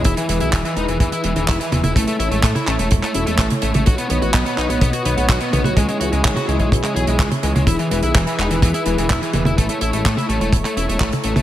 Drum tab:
HH |xxxxxxxxxxxxxxxx|xxxxxxxxxxxxxxxx|xxxxxxxxxxxxxxxx|xxxxxxxxxxxxxxxx|
CP |----x-------x---|----x-x--x--x---|----x-x-----x---|----x----x--x---|
T1 |--------------oo|-----o-------o-o|--------------oo|-----o-------o-o|
BD |o---o---o---o---|o---o---o---o---|o---o---o---o---|o---o--oo---o---|

HH |xxxxxxxxxxxxxxxx|xxxxxxxxxxxxxxxx|
CP |----x-x-----x---|----x----x--x---|
T1 |--------------oo|-----o-------o-o|
BD |o---o---o---o---|o---o---o---o---|